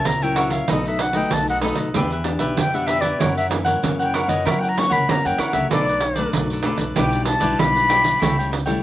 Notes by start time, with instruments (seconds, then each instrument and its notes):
Already playing: cavaquinho A#4 C#5 E5
0.05 upright bass C#2, nylon-string guitar A#2, flute A#5, pandeiro
0.22 nylon-string guitar F#3 C#4 E4, cavaquinho A#4 C#5 E5, flute G5, pandeiro
0.36 cavaquinho F#4 A#4 C#5 E5, flute F#5, pandeiro
0.50 cavaquinho A#4 C#5 E5, flute F5, pandeiro
0.68 upright bass B1, nylon-string guitar B2 F#3 A3 D#4, cavaquinho D#4 A4 B4 D#5, flute D#5, pandeiro
0.85 cavaquinho A4 B4 D#5, flute E5, pandeiro
0.99 flute F#5, muted cavaquinho stroke, pandeiro
1.13 nylon-string guitar F#3 A3 D#4, cavaquinho A4 B4 D#5, flute G5, pandeiro
1.31 upright bass B1, nylon-string guitar F#2, flute A5, pandeiro
1.48 cavaquinho A4 B4 D#5, flute F#5, pandeiro
1.61 nylon-string guitar F#3 A3 D#4, cavaquinho D#4 A4 B4 D#5, pandeiro
1.75 upright bass B1, cavaquinho A4 B4 D#5, pandeiro
1.94 upright bass E2, nylon-string guitar E3 B3 D4 G4, cavaquinho D4 G4 B4 E5, pandeiro
2.10 cavaquinho G4 B4 E5, pandeiro
2.24 nylon-string guitar B3 D4 G4, muted cavaquinho stroke, pandeiro
2.39 upright bass B1, cavaquinho G4 B4 E5, pandeiro
2.57 upright bass F2, nylon-string guitar B2, flute G5, pandeiro
2.73 nylon-string guitar B3 D4 G4, cavaquinho G4 B4 E5, flute F#5, pandeiro
2.86 cavaquinho D4 G4 B4 E5, flute E5, pandeiro
3.01 cavaquinho G4 B4 E5, flute D5, pandeiro
3.19 nylon-string guitar F#2 E3 A#3 C#4, upright bass F#2, cavaquinho E4 A#4 C#5 F#5, flute C#5, pandeiro
3.37 cavaquinho A#4 C#5 F#5, flute E5, pandeiro
3.49 nylon-string guitar E3 A#3 C#4, muted cavaquinho stroke, pandeiro
3.65 cavaquinho A#4 C#5 F#5, pandeiro
3.82 upright bass F#2, nylon-string guitar C#3 E3 A#3 C#4, pandeiro
3.99 cavaquinho A#4 C#5 F#5, flute G5, pandeiro
4.14 cavaquinho E4 A#4 C#5 F#5, flute F#5, pandeiro
4.28 upright bass F#2, nylon-string guitar E3 A#3 C#4, cavaquinho A#4 C#5 F#5, flute D#5, pandeiro
4.45 nylon-string guitar F#2, upright bass F#3, cavaquinho E4 A#4 C#5 F#5, flute E5, pandeiro
4.59 cavaquinho C#5 F#5, flute G5
4.63 cavaquinho A#4, pandeiro
4.69 flute A#5
4.76 nylon-string guitar E3 A#3 C#4, flute C#6, muted cavaquinho stroke, pandeiro
4.90 upright bass C#2, cavaquinho A#4 C#5 F#5, flute B5, pandeiro
5.09 upright bass F#2, nylon-string guitar C#3 E3 A#3 C#4, flute A#5, pandeiro
5.25 upright bass F#2, cavaquinho A#4 C#5 F#5, flute G5, pandeiro
5.38 upright bass E2, cavaquinho E4 A#4 C#5 F#5, flute F#5, pandeiro
5.53 upright bass C#2, nylon-string guitar F#3 A3 D4, cavaquinho A#4 C#5 F#5, flute E5, pandeiro
5.71 upright bass B1, nylon-string guitar B2, cavaquinho D4 A4 B4 D5, flute D5, pandeiro
5.88 cavaquinho A4 B4 D5, pandeiro
6.01 muted cavaquinho stroke, pandeiro
6.16 nylon-string guitar F#3 A3 D4, cavaquinho A4 B4 D5, pandeiro
6.33 upright bass B1, nylon-string guitar F#2, pandeiro
6.50 cavaquinho A4 B4 D5, pandeiro
6.63 nylon-string guitar F#3 A3 D4, cavaquinho D4 A4 B4 D5, pandeiro
6.77 upright bass B1, cavaquinho A4 B4 D5, pandeiro
6.96 upright bass B1, nylon-string guitar B2 G3 D4 E4, cavaquinho E4 G4 B4 D5, flute G5, pandeiro
7.12 cavaquinho G4 B4 D5, pandeiro
7.25 flute A5, muted cavaquinho stroke, pandeiro
7.40 upright bass B1, nylon-string guitar G3 D4 E4, cavaquinho G4 B4 D5, pandeiro
7.59 upright bass B1, nylon-string guitar B2, flute B5, pandeiro
7.74 cavaquinho G4 B4 D5, pandeiro
7.89 nylon-string guitar G3 D4 E4, cavaquinho E4 G4 B4 D5, pandeiro
8.03 cavaquinho G4 B4 D5, pandeiro
8.20 upright bass C#2, nylon-string guitar C#3 G3 A3 E4, cavaquinho E4 A4 C#5 G5, pandeiro
8.39 cavaquinho A4 C#5 G5, pandeiro
8.51 muted cavaquinho stroke, pandeiro
8.66 nylon-string guitar G3 A3 E4, cavaquinho A4 C#5 G5, pandeiro